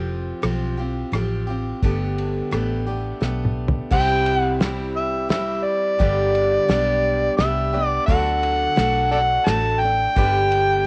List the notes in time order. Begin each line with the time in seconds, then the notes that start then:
Already playing: F1 F3 C4 F4 G4
0.42 B1 F3 C4 F4 G4, cross-stick, ride
0.77 C4 F4 G4
1.12 A1 F3 C4 F4 G4, cross-stick, ride
1.47 C4 F4 G4
1.82 G1 G2 D3 A3 B3 D4 G4, kick, ride
2.18 ride
2.51 A1 A3 B3 D4 G4, cross-stick, ride
2.87 A3 B3 D4 G4
3.21 B1 A3 B3 D4 G4, snare
3.45 mid tom
3.68 floor tom
3.90 C2 C3 G3 C4 E4 G4 C5 G5, kick, crash
4.26 ride
4.38 F#5
4.60 G3 C4 E4 G4, snare, ride
4.96 E5
5.29 G3 C4 E4 G4 E5, snare, ride
5.64 D5
5.99 G1 G2 D3 G3 B3 D4 G4 B4 D5, kick, ride
6.35 ride
6.68 B1 G3 B3 D4 G4, snare, ride
7.37 C2 G3 B3 E5, snare, ride
7.41 D4 G4
7.72 G3 B3 D4 G4 B4 D5
7.87 D5
8.06 D2 D3 F#3 A3 D4 F#4 A4 D5 F#5, kick, ride
8.10 A4
8.43 ride
8.76 B1 A3 D4 F#4 A4, snare, ride
9.11 D4 F#4 A4 D5 F#5
9.46 A1 A3 D4 F#4 A4 A5, snare, ride
9.80 A4 G5
9.84 D4
10.15 G1 G2 D3 G3 B3 D4 G4 B4 D5, kick, ride
10.52 ride